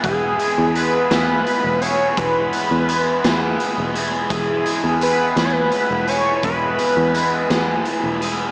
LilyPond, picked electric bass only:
\new Staff \with { instrumentName = "Picked electric bass" } { \clef bass \time 6/8 \key e \major \tempo 4. = 56 e,,8 r16 e,8. e,8 r16 e,,8. | e,,8 r16 e,8. e,8 r16 e,,8. | e,,8 r16 e,8. e,8 r16 e,,8. | e,,8 r16 e,8. e,8 r16 e,,8. | }